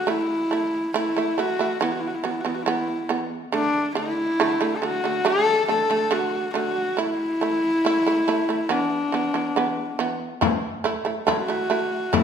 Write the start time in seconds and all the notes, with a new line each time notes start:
Already playing: F#4
0.07 A3 E4
0.11 E4
0.51 A3 E4
0.94 A3 E4
1.17 A3 E4
1.38 A3 E4 F#4
1.59 A3 E4
1.81 E3 B3 E4
1.92 F#4
2.00 E4
2.08 F#4
2.15 E4
2.24 E3 B3 F#4
2.31 E4
2.41 E3 F#4
2.46 B3 E4
2.55 F#4
2.63 E3 E4
2.68 B3
3.09 E3 B3
3.52 D3 A3 D4
3.95 D3 A3 E4
4.40 D3 A3
4.61 D3 A3
4.77 A4
4.82 D3 A3 F#4
5.04 D3 A3
5.25 D3 A3 A4
5.68 D3 A3 A4
5.90 D3 A3
6.11 D3 A3 F#4
6.54 D3 A3 F#4
6.97 A3 E4
7.41 A3 E4
7.85 A3 E4
8.06 A3 E4
8.28 A3 E4
8.49 A3 E4
8.69 E3 B3 D4
9.12 E3 B3
9.34 E3 B3
9.56 E3 B3
9.99 E3 B3
10.41 A3 E4, frame drum
10.84 A3 E4, frame drum
11.05 A3 E4
11.27 A3 E4 F#4, frame drum
11.48 A3 E4
11.70 A3 E4
12.13 A3 E4, frame drum